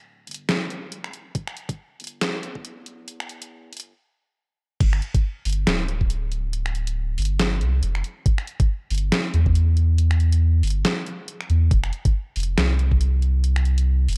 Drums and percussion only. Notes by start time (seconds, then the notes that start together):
0.27 closed hi-hat
0.31 closed hi-hat
0.34 closed hi-hat
0.49 snare, closed hi-hat
0.70 closed hi-hat
0.92 closed hi-hat
1.04 finger snap
1.13 closed hi-hat
1.35 kick, closed hi-hat
1.48 finger snap
1.57 closed hi-hat
1.69 kick, closed hi-hat
2.00 closed hi-hat
2.04 closed hi-hat
2.07 closed hi-hat
2.21 finger snap, snare, closed hi-hat
2.43 closed hi-hat
2.55 kick
2.65 closed hi-hat
2.86 closed hi-hat
3.08 closed hi-hat
3.20 finger snap
3.29 closed hi-hat
3.42 closed hi-hat
3.73 closed hi-hat
3.77 closed hi-hat
3.80 closed hi-hat
4.80 kick, closed hi-hat, crash
4.93 finger snap
5.02 closed hi-hat
5.14 kick, closed hi-hat
5.45 open hi-hat
5.50 closed hi-hat
5.53 closed hi-hat
5.67 finger snap, snare, closed hi-hat
5.88 closed hi-hat
6.01 kick
6.10 closed hi-hat
6.32 closed hi-hat
6.53 closed hi-hat
6.66 finger snap
6.75 closed hi-hat
6.87 closed hi-hat
7.18 open hi-hat
7.22 closed hi-hat
7.25 closed hi-hat
7.39 snare, closed hi-hat
7.61 closed hi-hat
7.83 closed hi-hat
7.95 finger snap
8.04 closed hi-hat
8.26 kick, closed hi-hat
8.38 finger snap
8.47 closed hi-hat
8.60 kick, closed hi-hat
8.90 open hi-hat
8.95 closed hi-hat
8.98 closed hi-hat
9.12 finger snap, snare, closed hi-hat
9.34 closed hi-hat
9.46 kick
9.55 closed hi-hat
9.77 closed hi-hat
9.98 closed hi-hat
10.11 finger snap
10.20 closed hi-hat
10.32 closed hi-hat
10.63 open hi-hat
10.67 closed hi-hat
10.70 closed hi-hat
10.85 snare, closed hi-hat
11.06 closed hi-hat
11.28 closed hi-hat
11.41 finger snap
11.50 closed hi-hat
11.71 kick, closed hi-hat
11.84 finger snap
11.93 closed hi-hat
12.05 kick, closed hi-hat
12.36 open hi-hat
12.40 closed hi-hat
12.43 closed hi-hat
12.58 finger snap, snare, closed hi-hat
12.79 closed hi-hat
12.91 kick
13.01 closed hi-hat
13.22 closed hi-hat
13.44 closed hi-hat
13.56 finger snap
13.65 closed hi-hat
13.78 closed hi-hat
14.08 open hi-hat
14.13 closed hi-hat